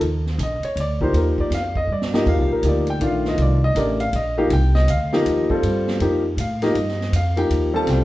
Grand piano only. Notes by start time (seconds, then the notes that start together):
0.43 D#5
0.65 C#5
0.80 D5
1.01 F3 A#3 D#4 G4 C5
1.17 A#4
1.40 D5
1.54 F5
1.77 D#5
1.92 D5
2.14 F3 A#3 D#4 G4 D#5
2.29 F5
2.52 A#4
2.64 F3 A#3 D#4 G4
2.68 D5
2.90 G5
3.01 D#3 A3 D4 F4
3.07 F5
3.28 D#5
3.42 D5
3.64 D#5
3.76 A3 D4 G4 A#4 D5
4.00 F5
4.16 D#5
4.37 F3 A#3 D#4 G4 F5
4.53 G5
4.75 D#5
4.90 F5
5.13 F3 A#3 D#4 G4 D#5
5.50 G3 C4 F4 A4
6.01 F3 A#3 D#4 G4
6.40 F5
6.62 F3 A#3 D#4 G4 D#5
7.16 F5
7.36 F3 A#3 D#4 G4 G5
7.74 G3 C4 F4 A4 A5
7.90 G5